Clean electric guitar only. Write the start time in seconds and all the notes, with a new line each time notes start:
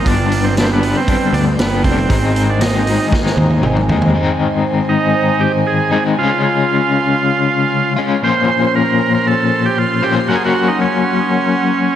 0.04 G2 D3 G3 B3 D4
0.29 G3 B3 D4
0.55 D3 G3 B3 D4
0.81 G3 B3 D4
1.06 G2 D3 G3 B3 D4
1.57 D3 G3 B3 D4
1.83 G3 D4
2.09 G#2 D#3 G#3 C4 D#4
2.35 G#3 C4 D#4
2.60 D#3 G#3 C4 D#4
2.86 G#3 C4 D#4
3.11 G#2 D#3 G#3 C4 D#4
3.62 D#3 G#3 C4 D#4
3.88 G#3 C4 D#4
4.14 G#2 D#3 G#3 C4 D#4
5.91 G#2 D#3 G#3 C4 D#4
6.18 C#3 G#3 C#4 F4
7.96 C#3 G#3 C#4 F4
8.22 A#2 F3 A#3 C#4 F4 C5
10.02 A#2 F3 A#3 C#4 F4 C5
10.29 F#3 A#3 C#4 F#4 A#4